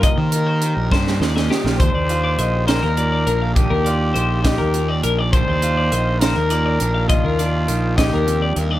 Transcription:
<<
  \new Staff \with { instrumentName = "Clean electric guitar" } { \time 6/8 \key ees \major \tempo 4. = 68 ees''16 c''16 bes'16 c''8 bes'16 c''8 d''16 ees''16 g'8 | c''16 d''8 d''16 ees''8 c''16 bes'16 d''16 d''16 bes'16 f''16 | ees''16 bes'16 d''8 c''8 ees''16 bes'8 d''16 bes'16 d''16 | c''16 d''8 d''16 ees''8 c''16 bes'16 d''16 d''16 bes'16 f''16 |
ees''16 bes'16 d''8 c''8 ees''16 bes'8 d''16 bes'16 d''16 | }
  \new Staff \with { instrumentName = "Trumpet" } { \time 6/8 \key ees \major bes'2 r4 | c''4. bes'4. | g'4. g'4 r8 | c''4. bes'4. |
f'4. g'4 r8 | }
  \new Staff \with { instrumentName = "Clean electric guitar" } { \clef bass \time 6/8 \key ees \major << { r4. d'4 ees'16 f'16 | d'8 f'2 d'8 | d'8 f'2 d'8 | d'8 f'2 d'8 |
d'8 d'2~ d'8 | } \\ { <ees, ees>4 ees4 bes,4 | ees,4 ees4 bes,4 | ees,4 ees4 bes,4 | ees,4 ees4 bes,4 |
ees,4 ees8 ees,8 f,8 g,8 | } >> }
  \new Staff \with { instrumentName = "Fingered electric bass" } { \clef bass \time 6/8 \key ees \major r16 ees4 bes,,16 g,8 ees,8 r16 bes,,16 | ees,16 ees,8. bes,,8. ees,8. bes,,8~ | bes,,16 ees,8. bes,,8. ees,8. bes,,8~ | bes,,16 ees,8. bes,,8. ees,8. bes,,8~ |
bes,,16 ees,8. bes,,8. ees,8. ees,8 | }
  \new DrumStaff \with { instrumentName = "Drums" } \drummode { \time 6/8 <hh bd>8 hh8 hh8 <bd sn>16 sn16 sn16 sn16 sn16 sn16 | <hh bd>8 hh8 hh8 <hh sn>8 hh8 hh8 | <hh bd>8 hh8 hh8 <hh bd sn>8 hh8 hh8 | <hh bd>8 hh8 hh8 <hh sn>8 hh8 hh8 |
<hh bd>8 hh8 hh8 <hh bd sn>8 hh8 hh8 | }
>>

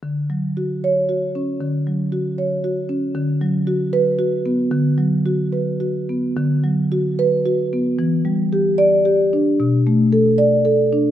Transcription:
\new Staff \with { instrumentName = "Marimba" } { \time 6/8 \key d \major \tempo 4. = 76 << { r4. cis''4 r8 | r2. | r4. b'4 r8 | r2. |
r4. b'4 r8 | r4. d''4 r8 | r4. d''4 r8 | } \\ { d8 fis8 fis'4 fis'8 cis'8 | d8 fis8 fis'8 cis''8 fis'8 cis'8 | d8 fis8 fis'4 fis'8 b8 | d8 fis8 fis'8 b'8 fis'8 b8 |
d8 fis8 fis'4 fis'8 b8 | e8 g8 g'4 g'8 d'8 | b,8 a8 a'4 a'8 d'8 | } >> }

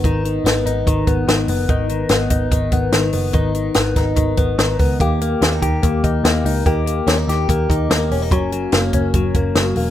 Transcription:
<<
  \new Staff \with { instrumentName = "Clean electric guitar" } { \time 4/4 \key gis \minor \tempo 4 = 145 <dis b dis'>8 dis8 b8 dis'8 dis8 b8 dis8 b8 | <dis dis'>8 dis8 b8 dis'8 dis8 b8 dis8 b8 | <dis dis'>8 dis8 b8 dis'8 dis8 b8 dis8 b8 | <ais g'>8 ais8 cis'16 dis'16 g'8 ais8 dis'8 ais8 dis'8 |
<ais g'>8 ais8 cis'16 dis'16 g'8 ais8 dis'8 ais8 cis'16 dis'16 | <fis cis'>8 fis8 ais8 cis'8 fis8 ais8 fis8 ais8 | }
  \new Staff \with { instrumentName = "Picked electric bass" } { \clef bass \time 4/4 \key gis \minor gis,,4 gis,,8 gis,,8 gis,,8 gis,,8 gis,,8 fis,,8 | gis,,4 gis,,8 gis,,8 gis,,8 gis,,8 gis,,8 fis,,8 | gis,,4 gis,,8 gis,,8 gis,,8 gis,,8 gis,,8 cis,8 | dis,4 dis,8 dis,8 dis,8 dis,8 dis,8 cis,8 |
dis,4 dis,8 dis,8 dis,8 dis,8 dis,8 e,,8 | fis,,4 fis,,8 fis,,8 fis,,8 fis,,8 fis,,8 e,,8 | }
  \new DrumStaff \with { instrumentName = "Drums" } \drummode { \time 4/4 <hh bd>8 hh8 <hh sn>8 hh8 <hh bd>8 <hh bd>8 <hh sn>8 hho8 | <hh bd>8 hh8 <hh sn>8 <hh bd>8 <hh bd>8 <hh bd>8 <hh sn>8 hho8 | <hh bd>8 hh8 <hh sn>8 <hh bd sn>8 <hh bd>8 <hh bd>8 <hh sn>8 <hho bd>8 | <hh bd>8 hh8 <hh sn>8 <hh bd>8 <hh bd>8 <hh bd>8 <hh sn>8 hho8 |
<hh bd>8 hh8 <hh sn>8 <hh sn>8 <hh bd>8 <hh bd>8 <hh sn>8 hho8 | <hh bd>8 hh8 <hh sn>8 <hh bd>8 <hh bd>8 <hh bd>8 <hh sn>8 hho8 | }
>>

